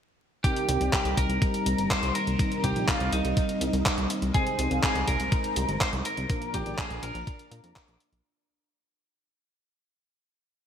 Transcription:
0.44 0.78 C3 medium
0.44 0.78 G3 medium
0.44 4.31 G3 medium
0.44 0.78 C4 medium
0.44 6.26 C4 medium
0.44 0.78 D#4 medium
0.44 4.31 D#4 medium
0.44 0.89 G4 medium
0.44 0.78 A#4 loud
0.44 4.31 A#4 medium
0.44 kick loud
0.44 closed hi-hat medium
0.56 closed hi-hat soft
0.69 0.78 C2 loud
0.69 closed hi-hat loud
0.81 0.90 C2 medium
0.81 1.00 C3 medium
0.81 1.00 G3 medium
0.81 1.00 C4 medium
0.81 1.00 D#4 medium
0.81 1.00 D5 loud
0.81 closed hi-hat soft
0.93 1.18 G4 loud
0.93 kick loud
0.93 clap loud
0.93 closed hi-hat medium
1.05 1.14 C2 medium
1.05 closed hi-hat soft
1.17 1.27 C2 medium
1.17 1.90 A#4 loud
1.17 kick medium
1.17 closed hi-hat loud
1.29 1.39 C2 medium
1.29 closed hi-hat soft
1.42 kick loud
1.42 closed hi-hat medium
1.54 closed hi-hat soft
1.66 1.75 C2 medium
1.66 closed hi-hat medium
1.78 1.87 G1 medium
1.78 closed hi-hat soft
1.91 2.13 C5 loud
1.91 kick loud
1.91 clap loud
1.91 closed hi-hat medium
2.03 2.12 C2 medium
2.03 closed hi-hat soft
2.15 2.65 A#4 loud
2.15 closed hi-hat medium
2.27 2.36 C2 medium
2.27 closed hi-hat soft
2.39 2.73 C3 medium
2.39 2.73 G3 medium
2.39 2.73 C4 medium
2.39 2.73 D#4 medium
2.39 2.73 A#4 loud
2.39 kick loud
2.39 closed hi-hat medium
2.52 closed hi-hat soft
2.64 2.73 C2 loud
2.64 2.86 G4 loud
2.64 kick medium
2.64 closed hi-hat loud
2.76 2.85 A#1 medium
2.76 2.95 C3 medium
2.76 2.95 G3 medium
2.76 2.95 C4 medium
2.76 2.95 D#4 medium
2.76 2.95 D5 loud
2.76 closed hi-hat soft
2.88 3.11 F4 medium
2.88 kick loud
2.88 clap loud
2.88 closed hi-hat medium
3.00 3.09 C2 medium
3.00 closed hi-hat soft
3.12 3.22 C2 medium
3.12 4.06 D#4 medium
3.12 closed hi-hat medium
3.25 3.34 C2 medium
3.25 closed hi-hat soft
3.37 kick loud
3.37 closed hi-hat medium
3.49 closed hi-hat soft
3.61 3.70 C2 medium
3.61 closed hi-hat medium
3.73 3.83 C2 medium
3.73 closed hi-hat soft
3.86 kick loud
3.86 clap loud
3.86 closed hi-hat medium
3.98 4.07 C2 medium
3.98 closed hi-hat soft
4.10 closed hi-hat medium
4.22 4.31 C2 medium
4.22 closed hi-hat soft
4.34 4.68 C3 medium
4.34 4.68 G#3 medium
4.34 6.28 G#3 medium
4.34 4.68 C4 medium
4.34 4.68 D#4 medium
4.34 6.28 D#4 medium
4.34 4.82 G#4 medium
4.34 4.68 C5 medium
4.34 6.28 C5 medium
4.34 kick loud
4.34 closed hi-hat medium
4.47 closed hi-hat soft
4.59 4.68 C2 medium
4.59 closed hi-hat medium
4.71 4.80 C2 medium
4.71 4.90 C3 medium
4.71 4.90 G#3 medium
4.71 4.90 C4 medium
4.71 4.90 D#4 medium
4.71 4.90 F5 loud
4.71 closed hi-hat soft
4.83 5.08 G#4 medium
4.83 kick loud
4.83 clap loud
4.83 closed hi-hat medium
4.95 5.05 C2 medium
4.95 closed hi-hat soft
5.08 5.17 C2 medium
5.08 5.81 A#4 loud
5.08 kick medium
5.08 closed hi-hat medium
5.20 5.29 C2 medium
5.20 closed hi-hat soft
5.32 kick loud
5.32 closed hi-hat medium
5.44 closed hi-hat soft
5.56 5.65 C2 medium
5.56 closed hi-hat medium
5.68 5.78 G1 medium
5.68 closed hi-hat soft
5.81 5.88 C5 loud
5.81 kick loud
5.81 clap loud
5.81 closed hi-hat medium
5.93 6.02 C2 medium
5.93 closed hi-hat soft
6.05 6.56 A#4 loud
6.05 closed hi-hat medium
6.17 6.26 C2 medium
6.17 closed hi-hat soft
6.29 6.63 A#2 medium
6.29 6.63 F3 medium
6.29 8.23 A#3 medium
6.29 6.63 A#3 medium
6.29 6.63 D4 medium
6.29 8.23 D4 medium
6.29 8.23 F4 medium
6.29 6.63 A#4 medium
6.29 8.23 D5 medium
6.29 kick loud
6.29 closed hi-hat medium
6.42 closed hi-hat soft
6.54 6.63 A#1 medium
6.54 6.77 G4 medium
6.54 kick medium
6.54 closed hi-hat medium
6.66 6.75 G#1 medium
6.66 6.85 A#2 medium
6.66 6.85 F3 medium
6.66 6.85 A#3 medium
6.66 6.85 D4 medium
6.66 6.85 D5 loud
6.66 closed hi-hat soft
6.78 7.04 G#4 medium
6.78 kick loud
6.78 clap loud
6.78 closed hi-hat medium
6.90 7.00 A#1 medium
6.90 closed hi-hat soft
7.03 7.12 A#1 medium
7.03 7.96 A#4 loud
7.03 closed hi-hat medium
7.15 7.24 A#1 medium
7.15 closed hi-hat soft
7.27 kick loud
7.27 closed hi-hat medium
7.39 closed hi-hat soft
7.51 7.61 A#2 medium
7.51 closed hi-hat medium
7.64 7.73 F2 medium
7.64 closed hi-hat soft
7.76 kick loud
7.76 clap loud
7.76 closed hi-hat medium
7.88 7.97 A#1 medium
7.88 closed hi-hat soft
8.00 closed hi-hat medium
8.12 8.22 A#1 medium
8.12 closed hi-hat soft

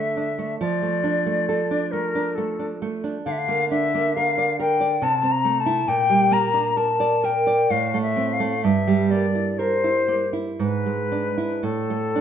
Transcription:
0.00 0.56 D3 soft
0.00 0.30 A3 soft
0.00 0.59 E5 medium
0.17 0.52 D4 soft
0.39 0.61 A3 soft
0.60 3.21 F3 medium
0.60 1.93 D5 medium
0.82 1.18 A3 soft
1.04 1.39 D4 soft
1.26 1.62 A3 soft
1.49 1.84 A4 soft
1.71 2.06 D4 soft
1.91 2.28 A3 soft
1.91 2.37 A#4 medium
2.15 2.50 D4 soft
2.35 2.72 A3 soft
2.35 2.80 A4 soft
2.59 2.94 D4 soft
2.82 3.17 A3 soft
3.04 3.26 D4 soft
3.26 4.99 D3 medium
3.26 3.33 F5 medium
3.32 3.40 E5 medium
3.39 3.69 F5 medium
3.48 3.84 A#3 soft
3.70 4.07 D4 soft
3.70 4.17 E5 medium
3.95 4.30 A#3 soft
4.16 4.51 A#4 soft
4.16 4.60 F5 medium
4.38 4.73 D5 soft
4.59 4.94 A#4 soft
4.59 5.05 G5 medium
4.81 5.02 D5 soft
5.02 5.86 C3 medium
5.02 5.33 A5 medium
5.23 5.58 C4 soft
5.32 5.62 A#5 medium
5.45 5.80 A3 medium
5.60 5.90 A5 medium
5.66 5.88 E4 soft
5.88 7.66 A#2 medium
5.88 6.35 G5 medium
6.10 6.46 G3 soft
6.31 6.68 A#3 medium
6.31 6.78 A#5 medium
6.54 6.91 D4 soft
6.77 7.14 A#4 medium
6.77 7.26 A5 medium
7.00 7.37 D5 soft
7.24 7.61 A#4 medium
7.24 7.72 G5 medium
7.47 7.70 D5 soft
7.70 8.61 A2 medium
7.70 8.02 F5 medium
7.94 8.31 A3 soft
8.02 8.35 E5 medium
8.17 8.54 C4 soft
8.33 8.65 F5 medium
8.40 8.63 A3 soft
8.63 10.55 G2 medium
8.63 9.12 E5 medium
8.88 9.25 G3 soft
9.11 9.49 A#3 soft
9.11 9.60 D5 medium
9.35 9.74 E4 soft
9.59 9.98 A#4 soft
9.59 10.28 C5 medium
9.84 10.23 E4 soft
10.08 10.49 A#3 soft
10.33 10.59 E4 soft
10.59 11.61 G#2 medium
10.59 11.66 B4 medium
10.86 11.27 G#3 soft
11.12 11.53 D4 soft
11.38 11.64 E4 soft
11.63 12.21 A2 medium
11.63 12.21 A4 medium
11.90 12.21 A3 soft
12.15 12.21 D4 soft

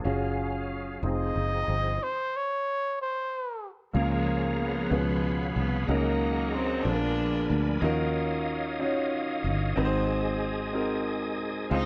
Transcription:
0.04 0.98 F#1 medium
0.04 1.01 F#3 medium
0.04 0.89 C#4 medium
0.04 1.01 C#4 soft
0.04 0.89 F4 medium
0.04 0.90 F#4 medium
0.04 1.98 G#4 medium
0.04 0.90 G#4 medium
0.04 1.01 F5 medium
1.03 1.32 F1 medium
1.03 1.99 F3 medium
1.03 1.87 C4 medium
1.03 1.99 C4 medium
1.03 1.99 D#4 medium
1.03 1.87 D#4 soft
1.03 1.88 F4 soft
1.03 1.88 G#4 medium
1.03 2.05 D#5 medium
1.36 1.65 F#1 medium
1.68 1.97 G1 medium
2.03 2.38 C5 medium
2.37 2.99 C#5 medium
3.02 3.68 C5 medium
3.93 4.88 C#2 loud
3.93 4.87 C#3 medium
3.93 4.61 F3 medium
3.93 4.56 G#3 medium
3.93 4.78 A#3 medium
3.93 4.78 C#4 medium
3.93 4.78 F4 medium
3.93 6.83 G#4 medium
3.93 4.79 G#4 medium
3.93 4.79 A#4 medium
3.93 5.87 C#5 medium
3.93 5.87 F5 medium
3.93 4.91 A#5 medium
4.61 5.54 F3 medium
4.61 5.53 G#3 medium
4.61 5.58 B3 medium
4.90 5.52 C#2 medium
4.90 5.84 B2 medium
4.90 5.75 B3 medium
4.90 5.75 C#4 medium
4.90 5.75 F4 medium
4.90 5.76 G#4 medium
4.90 5.76 B4 medium
4.90 5.88 B5 medium
5.56 5.86 C2 medium
5.56 5.88 B3 medium
5.87 6.82 C#2 loud
5.87 6.82 C#3 medium
5.87 6.83 D#3 medium
5.87 6.83 F#3 medium
5.87 6.73 C#4 medium
5.87 6.73 D#4 medium
5.87 6.73 F#4 medium
5.87 6.73 G#4 medium
5.87 6.73 A#4 medium
5.87 6.84 D#5 medium
5.87 6.84 F#5 medium
5.87 6.84 A#5 medium
5.92 6.55 A#3 loud
6.54 6.86 C4 loud
6.85 7.46 A#1 medium
6.85 7.79 A#2 medium
6.85 7.80 F3 medium
6.85 7.80 G#3 medium
6.85 7.69 B3 medium
6.85 7.70 D4 medium
6.85 7.59 D4 loud
6.85 7.70 F4 medium
6.85 7.70 G#4 medium
6.85 6.93 A4 medium
6.85 7.81 A#4 medium
6.85 7.81 D5 medium
6.85 7.81 G#5 medium
6.85 7.81 B5 medium
6.93 7.74 A#4 medium
7.50 7.80 D2 medium
7.80 9.46 D#2 loud
7.80 8.76 D#3 medium
7.80 8.66 C#4 medium
7.80 8.67 D#4 medium
7.80 8.67 F4 medium
7.80 8.67 F#4 medium
7.80 9.74 C#5 medium
7.80 11.66 D#5 medium
7.80 9.74 F5 medium
7.80 11.66 D#6 medium
7.84 8.68 A#4 loud
8.79 9.64 C#4 medium
8.79 9.64 D#4 medium
8.79 9.64 F4 medium
8.79 9.65 F#4 medium
8.79 9.65 C#5 medium
9.44 9.74 G1 medium
9.76 11.38 G#1 loud
9.76 10.70 G#2 medium
9.76 10.60 C4 medium
9.76 10.61 D#4 medium
9.76 10.61 F#4 medium
9.76 10.61 G#4 medium
9.76 11.86 G#4 medium
9.76 9.84 B4 medium
9.76 11.69 G#5 medium
9.85 10.65 C5 loud
10.73 11.57 C4 medium
10.73 11.58 D#4 medium
10.73 11.58 F#4 medium
10.73 11.59 G#4 medium
10.73 11.58 A#4 medium
11.38 11.68 C2 medium
11.69 11.86 C#2 loud
11.69 11.86 C#3 medium
11.69 11.86 G#3 medium
11.69 11.86 C4 medium
11.69 11.86 D#4 medium
11.69 11.86 D#4 loud
11.69 11.86 F4 medium
11.69 11.86 G#4 medium
11.69 11.86 C5 medium
11.69 11.86 D#5 medium
11.69 11.86 F5 medium

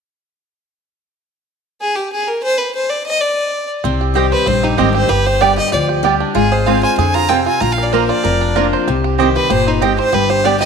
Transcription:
1.81 1.97 G#4 medium
1.96 2.12 G4 medium
2.13 2.29 G#4 medium
2.28 2.43 A#4 medium
2.43 2.60 C5 loud
2.58 2.74 B4 medium
2.75 2.91 C5 medium
2.90 3.06 D5 medium
3.06 3.22 D#5 loud
3.21 3.69 D5 medium
3.84 4.32 C2 medium
3.84 4.44 C3 medium
3.84 4.29 C4 medium
4.01 4.14 G4 medium
4.14 4.45 D#3 medium
4.14 4.45 G3 medium
4.14 4.25 C4 medium
4.14 4.46 C4 medium
4.14 4.60 G4 medium
4.14 4.25 G4 medium
4.14 4.46 G4 medium
4.14 4.25 D#5 medium
4.14 4.26 G5 medium
4.32 4.49 B4 medium
4.32 4.75 C5 medium
4.46 4.74 A#1 medium
4.46 5.07 G2 medium
4.46 4.77 C4 medium
4.46 4.65 C5 medium
4.63 4.79 D#4 medium
4.63 4.93 G4 medium
4.78 5.05 G#1 medium
4.78 5.08 D#3 medium
4.78 5.08 G3 medium
4.78 4.88 C4 medium
4.78 5.10 C4 medium
4.78 5.09 C4 medium
4.78 4.93 G4 medium
4.78 4.88 G4 medium
4.78 5.09 G4 medium
4.78 4.88 D#5 medium
4.78 4.88 G5 loud
4.94 5.08 G4 medium
4.94 5.11 C5 medium
5.09 5.58 G1 medium
5.09 5.69 G2 medium
5.09 5.25 G4 medium
5.09 5.28 B4 medium
5.26 5.40 G4 medium
5.26 5.42 C5 medium
5.41 5.71 D3 medium
5.41 5.72 G3 medium
5.41 5.51 B3 medium
5.41 5.72 B3 medium
5.41 5.56 G4 medium
5.41 5.51 G4 medium
5.41 5.72 G4 medium
5.41 5.57 D5 medium
5.41 5.51 D5 medium
5.41 5.51 G5 loud
5.58 5.71 G4 medium
5.58 5.72 D#5 loud
5.72 6.20 D2 medium
5.72 6.03 F3 medium
5.72 5.88 G4 medium
5.72 5.83 D5 medium
5.89 6.03 G4 medium
6.03 6.34 G3 medium
6.03 6.13 B3 medium
6.03 6.14 G4 medium
6.03 6.36 G4 medium
6.03 6.14 D5 medium
6.03 6.14 G5 loud
6.20 6.35 D4 medium
6.35 6.83 G#1 medium
6.35 6.65 G#3 medium
6.35 6.66 F4 medium
6.35 6.53 G#4 medium
6.52 6.95 G#4 medium
6.52 6.69 C5 medium
6.66 6.96 G#3 medium
6.66 6.97 C4 medium
6.66 6.77 C4 medium
6.66 7.12 F4 medium
6.66 6.77 F4 medium
6.66 6.97 F4 medium
6.66 6.77 C5 medium
6.66 6.83 F5 medium
6.66 6.77 G#5 loud
6.83 7.27 C5 medium
6.83 6.97 G#5 loud
6.98 7.46 F2 medium
6.98 7.29 D3 medium
6.98 7.43 G#4 medium
6.98 7.16 G#5 medium
7.14 7.45 F4 medium
7.14 7.31 A#5 loud
7.29 7.60 C3 medium
7.29 7.39 C4 loud
7.29 7.61 C4 medium
7.29 7.40 F4 medium
7.29 7.40 C5 loud
7.29 7.46 G5 medium
7.29 7.40 G#5 loud
7.46 7.60 F4 medium
7.46 7.62 G#5 loud
7.60 8.09 A#1 medium
7.60 8.22 A#2 medium
7.60 8.06 F4 medium
7.60 7.74 A#5 loud
7.72 7.85 F5 medium
7.78 8.21 A#4 medium
7.83 7.95 D5 medium
7.93 8.23 F3 medium
7.93 8.02 A#3 medium
7.93 8.23 A#3 medium
7.93 8.23 D4 medium
7.93 8.03 F4 medium
7.93 8.24 F4 medium
7.93 8.11 A#4 medium
7.93 8.38 C5 medium
7.93 8.03 D5 loud
7.93 8.03 A#5 loud
8.09 8.53 F4 medium
8.09 8.56 D5 medium
8.24 8.72 F1 medium
8.24 8.85 F2 medium
8.24 8.55 A#4 medium
8.41 8.84 D4 medium
8.55 8.86 F3 medium
8.55 8.65 A#3 medium
8.55 8.86 A#3 medium
8.55 8.86 D4 medium
8.55 8.65 F4 medium
8.55 8.87 F4 medium
8.55 8.87 A#4 medium
8.55 8.66 D5 loud
8.55 8.66 A#5 medium
8.73 8.88 C5 medium
8.87 9.35 C2 medium
8.87 9.48 C3 medium
8.87 9.04 G4 medium
9.04 9.35 G4 medium
9.18 9.49 D#3 medium
9.18 9.49 G3 medium
9.18 9.28 C4 loud
9.18 9.50 C4 medium
9.18 9.28 G4 medium
9.18 9.50 G4 medium
9.18 9.64 C5 medium
9.18 9.29 D#5 loud
9.18 9.29 G5 medium
9.36 9.49 G4 medium
9.36 9.53 B4 medium
9.50 9.98 G1 medium
9.50 9.80 A#2 medium
9.50 9.80 G4 medium
9.50 9.69 C5 loud
9.67 10.10 C4 medium
9.67 9.83 D#4 medium
9.81 10.12 G#2 medium
9.81 9.91 C4 medium
9.81 10.12 G4 medium
9.81 9.91 G4 medium
9.81 9.99 G4 medium
9.81 9.92 D#5 medium
9.81 9.92 G5 loud
9.99 10.13 C5 medium
9.99 10.15 C5 medium
10.12 10.61 G1 medium
10.12 10.65 G2 medium
10.12 10.29 G4 medium
10.12 10.31 B4 medium
10.30 10.43 G4 medium
10.30 10.47 C5 loud
10.44 10.65 D3 medium
10.44 10.65 G3 medium
10.44 10.54 B3 loud
10.44 10.65 B3 medium
10.44 10.59 G4 medium
10.44 10.54 G4 medium
10.44 10.65 G4 medium
10.44 10.60 D5 medium
10.44 10.55 D5 loud
10.44 10.55 G5 loud
10.60 10.65 G4 medium
10.60 10.65 D#5 loud

